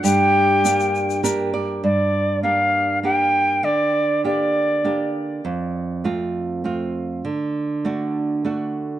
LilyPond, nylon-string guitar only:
\new Staff \with { instrumentName = "Nylon-string guitar" } { \time 3/4 \key g \minor \tempo 4 = 100 << { r2 bes'8 d''8 | r2. | r2. | r2. |
r2. | } \\ { g,4 <bes d' g'>4 <bes d' g'>4 | g,4 <bes d' g'>4 <bes d' g'>4 | d4 <bes d' g'>4 <bes d' g'>4 | f,4 <a c' f'>4 <a c' f'>4 |
d4 <a d' fis'>4 <a d' fis'>4 | } >> }